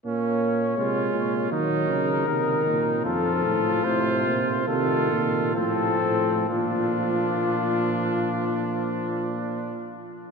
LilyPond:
<<
  \new Staff \with { instrumentName = "Trumpet" } { \time 4/4 \key f \phrygian \tempo 4 = 70 des''2 bes'2 | a'4 c''4 a'4 a'4 | f'1 | }
  \new Staff \with { instrumentName = "Trumpet" } { \time 4/4 \key f \phrygian des'4 f'4 ees'4 ees'4 | f'2 f'4 c'4 | d'1 | }
  \new Staff \with { instrumentName = "Trombone" } { \clef bass \time 4/4 \key f \phrygian bes4 aes4 ges4 ees4 | f4 c4 ees4 f4 | f1 | }
  \new Staff \with { instrumentName = "Tuba" } { \clef bass \time 4/4 \key f \phrygian bes,4 c8 bes,8 ees8 des8 c8 bes,8 | f,8 a,8 a,8 bes,8 c8 bes,8 a,8 a,8 | bes,1 | }
>>